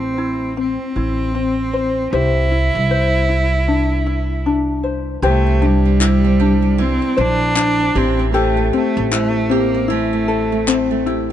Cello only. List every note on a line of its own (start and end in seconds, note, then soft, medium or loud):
0.00 0.58 C4 medium
0.61 2.16 C4 medium
2.15 4.47 E4 loud
5.26 5.67 A3 loud
5.66 6.83 G3 loud
6.82 7.22 C4 loud
7.21 7.99 D4 loud
7.98 8.30 C4 loud
8.30 8.38 A#3 medium
8.37 8.74 A3 medium
8.75 9.10 A3 medium
9.14 9.54 A3 loud
9.53 9.92 A#3 medium
9.91 11.07 A3 medium